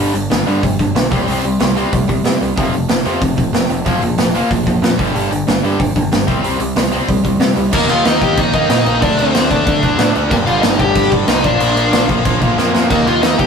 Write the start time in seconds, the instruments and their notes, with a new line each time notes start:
Already playing: overdriven electric guitar G2 D3 G3
0.13 picked electric bass G1, overdriven electric guitar G2 D3, open hi-hat
0.30 picked electric bass G1, overdriven electric guitar G2 D3, snare, open hi-hat
0.47 overdriven electric guitar G2 D3 G3, picked electric bass G2, open hi-hat
0.63 picked electric bass G1, overdriven electric guitar G2 D3, kick, open hi-hat
0.79 picked electric bass G1, overdriven electric guitar G2 D3, kick, open hi-hat
0.95 picked electric bass B1, overdriven electric guitar G2 D3, snare, open hi-hat
1.12 picked electric bass C2, overdriven electric guitar C3 G3 C4, kick, open hi-hat
1.27 picked electric bass C2, overdriven electric guitar C3 G3 C4, open hi-hat
1.44 picked electric bass C2, overdriven electric guitar C3 G3, open hi-hat
1.60 picked electric bass C2, overdriven electric guitar C3 G3, snare, open hi-hat
1.77 overdriven electric guitar C3 G3 C4, open hi-hat
1.93 picked electric bass C2, overdriven electric guitar C3 G3, kick, open hi-hat
2.09 picked electric bass C2, overdriven electric guitar C3 G3, kick, open hi-hat
2.25 overdriven electric guitar C3 G3, picked electric bass C3, snare, open hi-hat
2.41 picked electric bass C2, overdriven electric guitar C3 G3, open hi-hat
2.58 picked electric bass F1, overdriven electric guitar F2 C3 F3, kick, open hi-hat
2.73 picked electric bass F1, overdriven electric guitar F2 C3, open hi-hat
2.89 picked electric bass F1, overdriven electric guitar F2 C3, snare, open hi-hat
3.05 overdriven electric guitar F2 C3 F3, picked electric bass F2, open hi-hat
3.21 picked electric bass F1, overdriven electric guitar F2 C3, kick, open hi-hat
3.38 picked electric bass F1, overdriven electric guitar F2 C3, kick, open hi-hat
3.53 picked electric bass F1, overdriven electric guitar F2 C3, snare, open hi-hat
3.69 picked electric bass F1, overdriven electric guitar F2 C3, open hi-hat
3.86 picked electric bass F1, overdriven electric guitar A#2 F3 A#3, kick, open hi-hat
4.02 picked electric bass F1, overdriven electric guitar A#2 F3, open hi-hat
4.17 picked electric bass F1, overdriven electric guitar A#2 F3, snare, open hi-hat
4.35 overdriven electric guitar A#2 F3 A#3, open hi-hat
4.50 picked electric bass F1, overdriven electric guitar A#2 F3, kick, open hi-hat
4.67 picked electric bass F1, overdriven electric guitar A#2 F3, kick, open hi-hat
4.82 picked electric bass F2, overdriven electric guitar A#2 F3, snare, open hi-hat
4.99 picked electric bass G1, overdriven electric guitar G2 D3 G3, kick, open hi-hat
5.14 picked electric bass G1, overdriven electric guitar G2 D3 G3, open hi-hat
5.31 picked electric bass G1, overdriven electric guitar G2 D3, open hi-hat
5.47 picked electric bass G1, overdriven electric guitar G2 D3, snare, open hi-hat
5.63 overdriven electric guitar G2 D3 G3, picked electric bass G2, open hi-hat
5.80 picked electric bass G1, overdriven electric guitar G2 D3, kick, open hi-hat
5.96 picked electric bass G1, overdriven electric guitar G2 D3, kick, open hi-hat
6.12 picked electric bass G1, overdriven electric guitar G2 D3, snare, open hi-hat
6.27 picked electric bass C2, overdriven electric guitar C3 G3 C4, kick, open hi-hat
6.43 picked electric bass C2, overdriven electric guitar C3 G3 C4, open hi-hat
6.60 picked electric bass C2, overdriven electric guitar C3 G3, open hi-hat
6.76 picked electric bass C2, overdriven electric guitar C3 G3, snare, open hi-hat
6.92 overdriven electric guitar C3 G3 C4, open hi-hat
7.09 picked electric bass C2, overdriven electric guitar C3 G3, kick, open hi-hat
7.25 picked electric bass C2, overdriven electric guitar C3 G3, kick, open hi-hat
7.40 picked electric bass C3, overdriven electric guitar C3 G3, snare, open hi-hat
7.57 picked electric bass C2, overdriven electric guitar C3 G3, open hi-hat
7.73 picked electric bass D#2, overdriven electric guitar D#3 A#3 D#4, lead electric guitar A#3 A#4, kick, crash
7.89 picked electric bass D#2, overdriven electric guitar D#3 A#3 D#4, lead electric guitar F4 F5, crash
8.05 picked electric bass D#2, overdriven electric guitar D#3 A#3 D#4, lead electric guitar D#4 D#5, snare, crash
8.21 picked electric bass D#2, overdriven electric guitar D#3 A#3 D#4, lead electric guitar G4 G5, kick, crash
8.37 overdriven electric guitar D#3 A#3 D#4, picked electric bass D#3, lead electric guitar D#4 D#5, kick, crash
8.53 overdriven electric guitar D#3 A#3 D#4, lead electric guitar D#4 D#5, kick, crash
8.69 picked electric bass A#2, overdriven electric guitar D#3 A#3 D#4, snare, crash
8.86 picked electric bass A#1, overdriven electric guitar D#3 A#3 D#4, crash
9.02 picked electric bass D2, overdriven electric guitar D3 A3 D4, lead electric guitar D4 D5, kick, crash
9.19 picked electric bass D2, overdriven electric guitar D3 A3 D4, lead electric guitar C4 C5, crash
9.35 picked electric bass D2, overdriven electric guitar D3 A3 D4, snare, crash
9.50 picked electric bass D2, overdriven electric guitar D3 A3 D4, lead electric guitar D4 D5, kick, crash
9.66 picked electric bass D2, overdriven electric guitar D3 A3 D4, kick, crash
9.83 picked electric bass D2, overdriven electric guitar D3 A3 D4, kick, crash
9.99 picked electric bass A2, overdriven electric guitar D3 A3 D4, snare, crash
10.15 picked electric bass D2, overdriven electric guitar D3 A3 D4, crash
10.30 picked electric bass G1, overdriven electric guitar G2 D3 G3, lead electric guitar A#3 A#4, kick, crash
10.46 picked electric bass G1, overdriven electric guitar G2 D3 G3, lead electric guitar F4 F5, crash
10.61 picked electric bass G1, overdriven electric guitar G2 D3 G3, lead electric guitar D#4 D#5, snare, crash
10.79 picked electric bass G1, overdriven electric guitar G2 D3 G3, lead electric guitar G4 G5, kick, crash
10.95 picked electric bass G2, overdriven electric guitar G2 D3 G3, kick, crash
11.12 overdriven electric guitar G2 D3 G3, kick, crash
11.28 picked electric bass C2, overdriven electric guitar G2 D3 G3, lead electric guitar D#4 D#5, snare, crash
11.44 picked electric bass A#1, overdriven electric guitar A#2 F3 A#3, lead electric guitar D4 D5, kick, crash
11.60 picked electric bass A#1, overdriven electric guitar A#2 F3 A#3, crash
11.76 picked electric bass A#1, overdriven electric guitar A#2 F3 A#3, crash
11.92 picked electric bass A#1, overdriven electric guitar A#2 F3 A#3, snare, crash
12.09 picked electric bass A#1, overdriven electric guitar A#2 F3 A#3, kick, crash
12.25 picked electric bass A#1, overdriven electric guitar A#2 F3 A#3, kick, crash
12.41 picked electric bass A#1, overdriven electric guitar A#2 F3 A#3, kick, crash
12.58 picked electric bass F2, overdriven electric guitar A#2 F3 A#3, snare
12.75 picked electric bass F2, overdriven electric guitar A#2 F3 A#3, snare
12.90 picked electric bass D#2, overdriven electric guitar D#3 A#3 D#4, lead electric guitar A#3 A#4, kick, splash, crash
13.06 picked electric bass D#2, overdriven electric guitar D#3 A#3 D#4, lead electric guitar F4 F5, crash
13.22 picked electric bass D#2, overdriven electric guitar D#3 A#3 D#4, lead electric guitar D#4 D#5, snare, crash
13.38 picked electric bass D#2, overdriven electric guitar D#3 A#3 D#4, lead electric guitar G4 G5, kick, crash